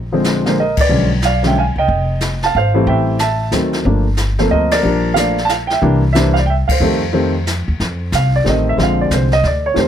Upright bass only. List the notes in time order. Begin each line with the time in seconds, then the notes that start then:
Already playing: A#1
0.89 B1
1.76 C2
1.88 F1
2.55 G#1
2.87 A1
3.52 D2
3.85 G1
4.51 D2
4.83 A#1
5.82 C2
6.69 muted upright bass stroke
6.80 F2
7.68 D#2
7.80 F2
8.12 C2
8.46 A1
8.78 A#1
9.11 C2
9.44 D2
9.76 F2